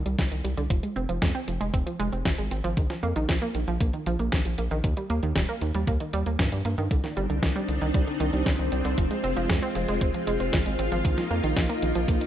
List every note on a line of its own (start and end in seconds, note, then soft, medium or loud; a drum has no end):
0.06 0.16 C2 medium
0.06 0.14 G3 medium
0.06 closed hi-hat soft
0.19 0.29 C2 loud
0.19 0.27 D3 medium
0.19 kick loud
0.19 snare loud
0.19 closed hi-hat medium
0.31 0.42 C2 medium
0.31 0.40 D#3 medium
0.31 closed hi-hat soft
0.44 0.55 C2 medium
0.44 0.49 G3 medium
0.44 closed hi-hat medium
0.57 0.68 C2 medium
0.57 0.62 D3 loud
0.57 closed hi-hat soft
0.70 0.81 F1 medium
0.70 0.75 F3 medium
0.70 kick loud
0.70 closed hi-hat medium
0.83 0.92 G#3 medium
0.83 closed hi-hat soft
0.96 1.06 F1 medium
0.96 1.04 C4 loud
0.96 closed hi-hat soft
1.09 1.19 F1 medium
1.09 1.17 F3 medium
1.09 closed hi-hat soft
1.22 1.32 F2 loud
1.22 1.30 G#3 medium
1.22 kick loud
1.22 snare loud
1.22 closed hi-hat loud
1.35 1.40 C4 loud
1.35 closed hi-hat soft
1.48 1.58 F1 medium
1.48 1.53 F3 medium
1.48 closed hi-hat medium
1.61 1.71 F1 medium
1.61 1.66 G#3 loud
1.61 closed hi-hat soft
1.74 1.84 F1 loud
1.74 1.79 C4 medium
1.74 kick loud
1.74 closed hi-hat medium
1.86 1.95 F3 medium
1.86 closed hi-hat soft
1.99 2.10 F1 medium
1.99 2.08 G#3 loud
1.99 closed hi-hat medium
2.12 2.23 F1 medium
2.12 2.21 C4 medium
2.12 closed hi-hat soft
2.25 2.36 G#1 loud
2.25 2.34 F3 medium
2.25 kick loud
2.25 snare loud
2.25 closed hi-hat medium
2.38 2.49 G#1 medium
2.38 2.47 G#3 medium
2.38 closed hi-hat soft
2.51 2.62 G#1 medium
2.51 2.56 C4 medium
2.51 closed hi-hat medium
2.64 2.74 G#1 medium
2.64 2.69 F3 loud
2.64 closed hi-hat soft
2.77 2.87 A#1 medium
2.77 2.82 D#3 medium
2.77 kick loud
2.77 closed hi-hat medium
2.90 2.98 F3 medium
2.90 snare soft
2.90 closed hi-hat soft
3.03 3.13 F2 medium
3.03 3.11 A#3 loud
3.03 closed hi-hat soft
3.16 3.26 A#1 medium
3.16 3.24 D#3 loud
3.16 closed hi-hat soft
3.29 3.39 A#1 loud
3.29 3.37 F3 medium
3.29 kick loud
3.29 snare loud
3.29 closed hi-hat medium
3.42 3.47 A#3 loud
3.42 closed hi-hat soft
3.55 3.65 A#1 medium
3.55 3.60 D#3 medium
3.55 closed hi-hat medium
3.68 3.78 A#1 medium
3.68 3.73 F3 loud
3.68 closed hi-hat soft
3.80 3.91 A#1 loud
3.80 3.86 A#3 medium
3.80 kick loud
3.80 closed hi-hat medium
3.93 4.02 D#3 medium
3.93 closed hi-hat soft
4.06 4.17 A#1 medium
4.06 4.15 F3 loud
4.06 closed hi-hat medium
4.19 4.30 A#1 medium
4.19 4.28 A#3 medium
4.19 closed hi-hat soft
4.32 4.43 A#1 loud
4.32 4.41 D#3 medium
4.32 kick loud
4.32 snare loud
4.32 closed hi-hat medium
4.45 4.56 A#1 medium
4.45 4.54 F3 medium
4.45 closed hi-hat soft
4.58 4.69 A#1 medium
4.58 4.63 A#3 medium
4.58 closed hi-hat medium
4.71 4.81 A#1 medium
4.71 4.76 D#3 loud
4.71 closed hi-hat soft
4.84 4.94 D#2 medium
4.84 4.89 D#3 medium
4.84 kick loud
4.84 closed hi-hat medium
4.97 5.05 G3 medium
4.97 closed hi-hat soft
5.10 5.20 D#2 medium
5.10 5.18 A#3 loud
5.10 closed hi-hat soft
5.23 5.33 D#2 medium
5.23 5.31 D#3 medium
5.23 closed hi-hat soft
5.36 5.46 D#1 loud
5.36 5.44 G3 medium
5.36 kick loud
5.36 snare loud
5.36 closed hi-hat medium
5.49 5.54 A#3 loud
5.49 closed hi-hat soft
5.61 5.72 D#2 medium
5.61 5.67 D#3 medium
5.61 closed hi-hat medium
5.74 5.85 D#2 medium
5.74 5.80 G3 medium
5.74 closed hi-hat soft
5.87 5.98 D#2 loud
5.87 5.93 A#3 medium
5.87 kick loud
5.87 closed hi-hat medium
6.00 6.09 D#3 medium
6.00 closed hi-hat soft
6.13 6.24 D#2 medium
6.13 6.22 G3 loud
6.13 closed hi-hat medium
6.26 6.37 D#2 medium
6.26 6.35 A#3 medium
6.26 closed hi-hat soft
6.39 6.49 G2 loud
6.39 6.48 D#3 medium
6.39 kick loud
6.39 snare loud
6.39 closed hi-hat medium
6.52 6.62 G2 medium
6.52 6.61 G3 medium
6.52 closed hi-hat soft
6.65 6.75 G2 medium
6.65 6.70 A#3 medium
6.65 closed hi-hat medium
6.78 6.88 G2 medium
6.78 6.83 D#3 loud
6.78 closed hi-hat soft
6.91 7.01 C2 loud
6.91 6.96 D3 medium
6.91 11.01 C4 medium
6.91 8.96 D4 medium
6.91 8.96 D#4 medium
6.91 kick loud
6.91 closed hi-hat medium
7.04 7.12 D#3 medium
7.04 snare soft
7.04 closed hi-hat soft
7.17 7.27 G1 medium
7.17 7.25 G3 loud
7.17 closed hi-hat soft
7.30 7.40 C2 medium
7.30 7.38 D3 medium
7.30 closed hi-hat soft
7.43 7.53 C2 loud
7.43 7.51 D#3 medium
7.43 kick loud
7.43 snare loud
7.43 closed hi-hat medium
7.56 7.61 G3 loud
7.56 closed hi-hat soft
7.68 7.79 C2 loud
7.68 7.74 D3 medium
7.68 closed hi-hat medium
7.81 7.92 C2 medium
7.81 7.87 D#3 loud
7.81 closed hi-hat soft
7.94 8.05 C2 loud
7.94 7.99 G3 medium
7.94 kick loud
7.94 closed hi-hat medium
8.07 8.16 D3 medium
8.07 closed hi-hat soft
8.20 8.31 C2 medium
8.20 8.29 D#3 loud
8.20 closed hi-hat medium
8.33 8.44 C2 medium
8.33 8.42 G3 medium
8.33 closed hi-hat soft
8.46 8.56 C2 loud
8.46 8.54 D3 medium
8.46 kick loud
8.46 snare loud
8.46 closed hi-hat medium
8.59 8.69 C2 medium
8.59 8.67 D#3 medium
8.59 closed hi-hat soft
8.72 8.82 C2 medium
8.72 8.77 G3 medium
8.72 closed hi-hat medium
8.85 8.95 C2 medium
8.85 8.90 D3 loud
8.85 closed hi-hat soft
8.98 9.08 F1 loud
8.98 9.03 F3 medium
8.98 11.03 G#3 medium
8.98 12.27 F4 medium
8.98 kick loud
8.98 closed hi-hat medium
9.11 9.19 G#3 medium
9.11 closed hi-hat soft
9.24 9.34 F1 medium
9.24 9.32 C4 loud
9.24 closed hi-hat soft
9.37 9.47 F1 medium
9.37 9.45 F3 loud
9.37 closed hi-hat soft
9.49 9.60 F2 loud
9.49 9.58 G#3 medium
9.49 kick loud
9.49 snare loud
9.49 closed hi-hat medium
9.62 9.68 C4 loud
9.62 closed hi-hat soft
9.75 9.86 F1 medium
9.75 9.80 F3 medium
9.75 closed hi-hat medium
9.88 9.99 F1 medium
9.88 9.93 G#3 loud
9.88 closed hi-hat soft
10.01 10.12 F1 loud
10.01 10.06 C4 medium
10.01 kick loud
10.01 closed hi-hat medium
10.14 10.23 F3 medium
10.14 closed hi-hat soft
10.27 10.37 F1 medium
10.27 10.36 G#3 loud
10.27 closed hi-hat medium
10.40 10.50 F1 medium
10.40 10.48 C4 medium
10.40 closed hi-hat soft
10.53 10.63 G#1 loud
10.53 10.61 F3 medium
10.53 kick loud
10.53 snare loud
10.53 closed hi-hat medium
10.66 10.76 G#1 medium
10.66 10.74 G#3 medium
10.66 closed hi-hat soft
10.79 10.89 G#1 medium
10.79 10.84 C4 medium
10.79 closed hi-hat medium
10.92 11.02 G#1 medium
10.92 10.97 F3 loud
10.92 closed hi-hat soft
11.05 11.15 A#1 loud
11.05 11.10 D#3 medium
11.05 12.27 A#3 medium
11.05 12.27 D#4 medium
11.05 kick loud
11.05 closed hi-hat loud
11.18 11.26 F3 medium
11.18 snare soft
11.18 closed hi-hat soft
11.31 11.41 F2 medium
11.31 11.39 A#3 medium
11.31 closed hi-hat soft
11.44 11.54 A#1 medium
11.44 11.52 D#3 loud
11.44 closed hi-hat soft
11.57 11.67 A#1 loud
11.57 11.65 F3 medium
11.57 kick loud
11.57 snare loud
11.57 closed hi-hat medium
11.69 11.74 A#3 loud
11.69 closed hi-hat soft
11.82 11.93 A#1 medium
11.82 11.87 D#3 medium
11.82 closed hi-hat medium
11.95 12.06 A#1 medium
11.95 12.00 F3 loud
11.95 closed hi-hat soft
12.08 12.19 A#1 loud
12.08 12.13 A#3 medium
12.08 kick loud
12.08 closed hi-hat medium
12.21 12.27 D#3 medium
12.21 closed hi-hat soft